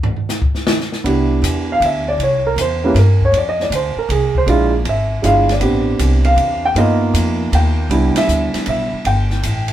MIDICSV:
0, 0, Header, 1, 5, 480
1, 0, Start_track
1, 0, Key_signature, 0, "major"
1, 0, Tempo, 380469
1, 1326, Time_signature, 3, 2, 24, 8
1, 12274, End_track
2, 0, Start_track
2, 0, Title_t, "Grand piano"
2, 0, Program_c, 0, 0
2, 1311, Note_on_c, 0, 59, 57
2, 1322, Note_on_c, 0, 62, 52
2, 1335, Note_on_c, 0, 64, 51
2, 1346, Note_on_c, 0, 67, 61
2, 2173, Note_on_c, 0, 77, 82
2, 2305, Note_off_c, 0, 77, 0
2, 2341, Note_on_c, 0, 76, 69
2, 2625, Note_off_c, 0, 76, 0
2, 2630, Note_on_c, 0, 74, 81
2, 2663, Note_off_c, 0, 59, 0
2, 2668, Note_off_c, 0, 62, 0
2, 2675, Note_off_c, 0, 64, 0
2, 2680, Note_off_c, 0, 67, 0
2, 2774, Note_off_c, 0, 74, 0
2, 2817, Note_on_c, 0, 73, 68
2, 3103, Note_off_c, 0, 73, 0
2, 3112, Note_on_c, 0, 70, 78
2, 3255, Note_off_c, 0, 70, 0
2, 3292, Note_on_c, 0, 72, 76
2, 3581, Note_off_c, 0, 72, 0
2, 3584, Note_on_c, 0, 61, 56
2, 3589, Note_on_c, 0, 58, 60
2, 3598, Note_on_c, 0, 64, 60
2, 3599, Note_on_c, 0, 71, 73
2, 3605, Note_on_c, 0, 67, 68
2, 3719, Note_off_c, 0, 61, 0
2, 3722, Note_off_c, 0, 58, 0
2, 3727, Note_off_c, 0, 64, 0
2, 3730, Note_off_c, 0, 67, 0
2, 3739, Note_off_c, 0, 71, 0
2, 3773, Note_on_c, 0, 70, 66
2, 4061, Note_off_c, 0, 70, 0
2, 4100, Note_on_c, 0, 73, 83
2, 4230, Note_off_c, 0, 73, 0
2, 4257, Note_on_c, 0, 74, 71
2, 4388, Note_off_c, 0, 74, 0
2, 4401, Note_on_c, 0, 75, 85
2, 4540, Note_off_c, 0, 75, 0
2, 4569, Note_on_c, 0, 74, 78
2, 4704, Note_off_c, 0, 74, 0
2, 4733, Note_on_c, 0, 72, 68
2, 5022, Note_off_c, 0, 72, 0
2, 5029, Note_on_c, 0, 70, 67
2, 5174, Note_off_c, 0, 70, 0
2, 5190, Note_on_c, 0, 68, 66
2, 5490, Note_off_c, 0, 68, 0
2, 5522, Note_on_c, 0, 72, 77
2, 5608, Note_off_c, 0, 72, 0
2, 5637, Note_on_c, 0, 56, 70
2, 5645, Note_on_c, 0, 62, 62
2, 5662, Note_on_c, 0, 64, 60
2, 5668, Note_on_c, 0, 65, 77
2, 5931, Note_off_c, 0, 56, 0
2, 5935, Note_off_c, 0, 62, 0
2, 5943, Note_off_c, 0, 64, 0
2, 5946, Note_off_c, 0, 65, 0
2, 6173, Note_on_c, 0, 76, 73
2, 6589, Note_on_c, 0, 56, 62
2, 6596, Note_on_c, 0, 62, 56
2, 6599, Note_off_c, 0, 76, 0
2, 6603, Note_on_c, 0, 64, 52
2, 6615, Note_on_c, 0, 65, 64
2, 6631, Note_on_c, 0, 77, 80
2, 6887, Note_off_c, 0, 56, 0
2, 6890, Note_off_c, 0, 62, 0
2, 6894, Note_off_c, 0, 64, 0
2, 6900, Note_off_c, 0, 65, 0
2, 6930, Note_off_c, 0, 77, 0
2, 6964, Note_on_c, 0, 74, 66
2, 7070, Note_on_c, 0, 59, 61
2, 7080, Note_on_c, 0, 60, 57
2, 7093, Note_on_c, 0, 62, 57
2, 7095, Note_on_c, 0, 67, 71
2, 7102, Note_off_c, 0, 74, 0
2, 7889, Note_on_c, 0, 77, 79
2, 8336, Note_off_c, 0, 77, 0
2, 8395, Note_on_c, 0, 79, 98
2, 8423, Note_off_c, 0, 59, 0
2, 8429, Note_off_c, 0, 60, 0
2, 8435, Note_off_c, 0, 62, 0
2, 8436, Note_off_c, 0, 67, 0
2, 8528, Note_on_c, 0, 58, 62
2, 8531, Note_on_c, 0, 59, 56
2, 8537, Note_off_c, 0, 79, 0
2, 8545, Note_on_c, 0, 63, 53
2, 8550, Note_on_c, 0, 65, 65
2, 8552, Note_on_c, 0, 75, 81
2, 8737, Note_off_c, 0, 75, 0
2, 9524, Note_on_c, 0, 79, 79
2, 9872, Note_off_c, 0, 58, 0
2, 9874, Note_off_c, 0, 59, 0
2, 9881, Note_off_c, 0, 63, 0
2, 9884, Note_off_c, 0, 65, 0
2, 9972, Note_on_c, 0, 55, 61
2, 9973, Note_on_c, 0, 59, 54
2, 9981, Note_on_c, 0, 62, 57
2, 9991, Note_on_c, 0, 64, 70
2, 10256, Note_off_c, 0, 79, 0
2, 10316, Note_on_c, 0, 76, 89
2, 10898, Note_off_c, 0, 76, 0
2, 10966, Note_on_c, 0, 76, 75
2, 11315, Note_off_c, 0, 55, 0
2, 11315, Note_off_c, 0, 59, 0
2, 11319, Note_off_c, 0, 62, 0
2, 11324, Note_off_c, 0, 64, 0
2, 11395, Note_off_c, 0, 76, 0
2, 11438, Note_on_c, 0, 79, 81
2, 12173, Note_off_c, 0, 79, 0
2, 12274, End_track
3, 0, Start_track
3, 0, Title_t, "Upright bass"
3, 0, Program_c, 1, 32
3, 1316, Note_on_c, 1, 36, 77
3, 1782, Note_off_c, 1, 36, 0
3, 1789, Note_on_c, 1, 40, 84
3, 2263, Note_off_c, 1, 40, 0
3, 2274, Note_on_c, 1, 38, 83
3, 2741, Note_off_c, 1, 38, 0
3, 2748, Note_on_c, 1, 36, 77
3, 3223, Note_off_c, 1, 36, 0
3, 3233, Note_on_c, 1, 40, 88
3, 3706, Note_off_c, 1, 40, 0
3, 3715, Note_on_c, 1, 43, 89
3, 4181, Note_off_c, 1, 43, 0
3, 4188, Note_on_c, 1, 41, 78
3, 4661, Note_off_c, 1, 41, 0
3, 4668, Note_on_c, 1, 38, 82
3, 4975, Note_off_c, 1, 38, 0
3, 5156, Note_on_c, 1, 36, 87
3, 5625, Note_off_c, 1, 36, 0
3, 5632, Note_on_c, 1, 34, 85
3, 6106, Note_off_c, 1, 34, 0
3, 6121, Note_on_c, 1, 32, 81
3, 6590, Note_off_c, 1, 32, 0
3, 6602, Note_on_c, 1, 31, 82
3, 7059, Note_off_c, 1, 31, 0
3, 7066, Note_on_c, 1, 33, 79
3, 7543, Note_off_c, 1, 33, 0
3, 7560, Note_on_c, 1, 36, 80
3, 8018, Note_off_c, 1, 36, 0
3, 8025, Note_on_c, 1, 40, 83
3, 8502, Note_off_c, 1, 40, 0
3, 8513, Note_on_c, 1, 43, 81
3, 8986, Note_off_c, 1, 43, 0
3, 9002, Note_on_c, 1, 41, 85
3, 9471, Note_off_c, 1, 41, 0
3, 9490, Note_on_c, 1, 39, 89
3, 9952, Note_off_c, 1, 39, 0
3, 9959, Note_on_c, 1, 36, 86
3, 10261, Note_off_c, 1, 36, 0
3, 10444, Note_on_c, 1, 38, 84
3, 10744, Note_off_c, 1, 38, 0
3, 10934, Note_on_c, 1, 35, 85
3, 11229, Note_off_c, 1, 35, 0
3, 11412, Note_on_c, 1, 31, 82
3, 11876, Note_off_c, 1, 31, 0
3, 11892, Note_on_c, 1, 33, 85
3, 12274, Note_off_c, 1, 33, 0
3, 12274, End_track
4, 0, Start_track
4, 0, Title_t, "Muted upright bass strokes"
4, 4991, Note_on_c, 9, 29, 38
4, 5118, Note_off_c, 9, 29, 0
4, 10289, Note_on_c, 9, 29, 39
4, 10416, Note_off_c, 9, 29, 0
4, 10773, Note_on_c, 9, 29, 36
4, 10899, Note_off_c, 9, 29, 0
4, 11263, Note_on_c, 9, 29, 37
4, 11389, Note_off_c, 9, 29, 0
4, 12274, End_track
5, 0, Start_track
5, 0, Title_t, "Drums"
5, 44, Note_on_c, 9, 43, 97
5, 170, Note_off_c, 9, 43, 0
5, 208, Note_on_c, 9, 43, 40
5, 334, Note_off_c, 9, 43, 0
5, 366, Note_on_c, 9, 38, 54
5, 367, Note_on_c, 9, 44, 63
5, 492, Note_off_c, 9, 38, 0
5, 493, Note_off_c, 9, 44, 0
5, 527, Note_on_c, 9, 36, 73
5, 653, Note_off_c, 9, 36, 0
5, 689, Note_on_c, 9, 38, 39
5, 815, Note_off_c, 9, 38, 0
5, 842, Note_on_c, 9, 38, 101
5, 968, Note_off_c, 9, 38, 0
5, 1013, Note_on_c, 9, 38, 46
5, 1139, Note_off_c, 9, 38, 0
5, 1166, Note_on_c, 9, 38, 50
5, 1292, Note_off_c, 9, 38, 0
5, 1333, Note_on_c, 9, 51, 54
5, 1459, Note_off_c, 9, 51, 0
5, 1813, Note_on_c, 9, 44, 58
5, 1813, Note_on_c, 9, 51, 63
5, 1939, Note_off_c, 9, 44, 0
5, 1939, Note_off_c, 9, 51, 0
5, 2297, Note_on_c, 9, 51, 56
5, 2423, Note_off_c, 9, 51, 0
5, 2773, Note_on_c, 9, 51, 53
5, 2899, Note_off_c, 9, 51, 0
5, 3253, Note_on_c, 9, 44, 55
5, 3253, Note_on_c, 9, 51, 62
5, 3379, Note_off_c, 9, 44, 0
5, 3379, Note_off_c, 9, 51, 0
5, 3730, Note_on_c, 9, 38, 36
5, 3731, Note_on_c, 9, 51, 54
5, 3856, Note_off_c, 9, 38, 0
5, 3858, Note_off_c, 9, 51, 0
5, 4049, Note_on_c, 9, 36, 52
5, 4176, Note_off_c, 9, 36, 0
5, 4210, Note_on_c, 9, 51, 55
5, 4336, Note_off_c, 9, 51, 0
5, 4542, Note_on_c, 9, 38, 38
5, 4668, Note_off_c, 9, 38, 0
5, 4694, Note_on_c, 9, 44, 52
5, 4694, Note_on_c, 9, 51, 64
5, 4821, Note_off_c, 9, 44, 0
5, 4821, Note_off_c, 9, 51, 0
5, 5172, Note_on_c, 9, 51, 60
5, 5298, Note_off_c, 9, 51, 0
5, 5488, Note_on_c, 9, 36, 59
5, 5614, Note_off_c, 9, 36, 0
5, 5647, Note_on_c, 9, 51, 51
5, 5773, Note_off_c, 9, 51, 0
5, 6122, Note_on_c, 9, 51, 53
5, 6248, Note_off_c, 9, 51, 0
5, 6608, Note_on_c, 9, 44, 57
5, 6608, Note_on_c, 9, 51, 58
5, 6734, Note_off_c, 9, 44, 0
5, 6734, Note_off_c, 9, 51, 0
5, 6927, Note_on_c, 9, 38, 46
5, 6929, Note_on_c, 9, 51, 44
5, 7054, Note_off_c, 9, 38, 0
5, 7055, Note_off_c, 9, 51, 0
5, 7075, Note_on_c, 9, 51, 58
5, 7202, Note_off_c, 9, 51, 0
5, 7561, Note_on_c, 9, 44, 55
5, 7561, Note_on_c, 9, 51, 67
5, 7687, Note_off_c, 9, 44, 0
5, 7687, Note_off_c, 9, 51, 0
5, 7879, Note_on_c, 9, 51, 43
5, 8005, Note_off_c, 9, 51, 0
5, 8043, Note_on_c, 9, 51, 53
5, 8169, Note_off_c, 9, 51, 0
5, 8530, Note_on_c, 9, 51, 54
5, 8656, Note_off_c, 9, 51, 0
5, 9015, Note_on_c, 9, 44, 54
5, 9015, Note_on_c, 9, 51, 65
5, 9141, Note_off_c, 9, 44, 0
5, 9141, Note_off_c, 9, 51, 0
5, 9499, Note_on_c, 9, 51, 59
5, 9625, Note_off_c, 9, 51, 0
5, 9976, Note_on_c, 9, 51, 57
5, 10102, Note_off_c, 9, 51, 0
5, 10290, Note_on_c, 9, 38, 74
5, 10292, Note_on_c, 9, 51, 63
5, 10417, Note_off_c, 9, 38, 0
5, 10418, Note_off_c, 9, 51, 0
5, 10454, Note_on_c, 9, 44, 50
5, 10580, Note_off_c, 9, 44, 0
5, 10774, Note_on_c, 9, 38, 50
5, 10775, Note_on_c, 9, 51, 44
5, 10900, Note_off_c, 9, 38, 0
5, 10901, Note_off_c, 9, 51, 0
5, 10923, Note_on_c, 9, 51, 55
5, 11050, Note_off_c, 9, 51, 0
5, 11418, Note_on_c, 9, 51, 54
5, 11544, Note_off_c, 9, 51, 0
5, 11735, Note_on_c, 9, 38, 38
5, 11861, Note_off_c, 9, 38, 0
5, 11902, Note_on_c, 9, 44, 50
5, 11902, Note_on_c, 9, 51, 63
5, 12028, Note_off_c, 9, 44, 0
5, 12028, Note_off_c, 9, 51, 0
5, 12212, Note_on_c, 9, 51, 46
5, 12274, Note_off_c, 9, 51, 0
5, 12274, End_track
0, 0, End_of_file